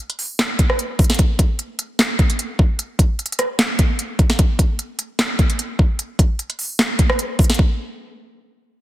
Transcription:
0.10 closed hi-hat
0.19 open hi-hat
0.39 snare, clap, closed hi-hat
0.59 kick, closed hi-hat
0.70 cross-stick
0.79 closed hi-hat
0.99 kick, closed hi-hat, open hi-hat
1.04 closed hi-hat
1.10 snare, closed hi-hat
1.14 closed hi-hat
1.19 kick, closed hi-hat
1.39 kick, closed hi-hat
1.59 closed hi-hat
1.79 closed hi-hat
1.99 snare, clap, closed hi-hat
2.19 kick, closed hi-hat
2.30 closed hi-hat
2.39 closed hi-hat
2.59 kick
2.79 closed hi-hat
2.99 kick, closed hi-hat
3.19 closed hi-hat
3.26 closed hi-hat
3.32 closed hi-hat
3.39 cross-stick, closed hi-hat
3.59 snare, clap, closed hi-hat
3.79 kick, closed hi-hat
3.99 closed hi-hat
4.19 kick, closed hi-hat
4.30 snare, closed hi-hat
4.39 kick, closed hi-hat
4.59 kick, closed hi-hat
4.79 closed hi-hat
4.99 closed hi-hat
5.19 snare, clap, closed hi-hat
5.39 kick, closed hi-hat
5.50 closed hi-hat
5.59 closed hi-hat
5.79 kick
5.99 closed hi-hat
6.19 kick, closed hi-hat
6.39 closed hi-hat
6.50 closed hi-hat
6.59 open hi-hat
6.79 snare, clap, closed hi-hat
6.99 kick, closed hi-hat
7.10 cross-stick
7.19 closed hi-hat
7.39 kick, closed hi-hat, open hi-hat
7.44 closed hi-hat
7.50 snare, closed hi-hat
7.54 closed hi-hat
7.59 kick

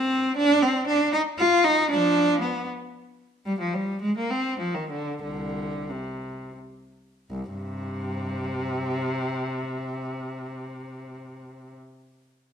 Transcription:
Already playing: C4
0.37 D4
0.63 C4
0.88 D4
1.13 D#4
1.39 F4
1.65 D#4
1.91 F3 D4
2.42 B3
3.46 G3
3.61 F3
3.74 G3
4.02 G#3
4.18 A#3
4.31 C4
4.60 F3
4.75 D#3
4.91 D3
5.22 C2 D3
5.90 C3
7.30 C2
7.51 G2 C3

